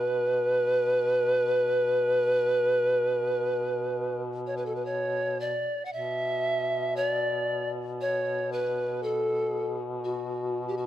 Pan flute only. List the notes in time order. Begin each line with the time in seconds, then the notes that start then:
Already playing: B4
4.47 C#5
4.57 B4
4.66 A4
4.75 B4
4.85 C#5
5.40 D5
5.85 F#5
5.93 E5
6.96 D5
8.01 C#5
8.52 B4
9.03 A4
10.04 F#4
10.68 G4
10.77 F#4